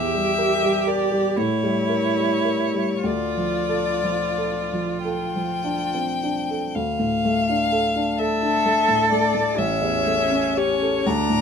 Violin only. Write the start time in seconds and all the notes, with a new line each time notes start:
Already playing: E5
0.88 D5
1.37 C#5
3.05 D5
5.04 G5
6.75 F5
8.19 E5
9.11 D5
9.58 E5
10.57 C#5
11.07 A#5